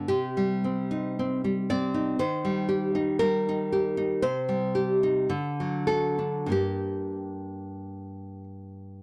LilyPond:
\new Staff \with { instrumentName = "Nylon-string guitar" } { \time 2/4 \key ees \major \tempo 4 = 55 << { g'4. d''8 | c''4 bes'4 | \key g \minor c''4. a'8 | g'4. r8 | } \\ { c16 g16 c'16 ees'16 c'16 g16 c'16 ees'16 | ees16 g16 g'16 ees'16 g16 ees'16 g'16 ees'16 | c16 g16 g'16 ees'16 d16 fis16 fis'16 d'16 | <g, bes d'>2 | } >> }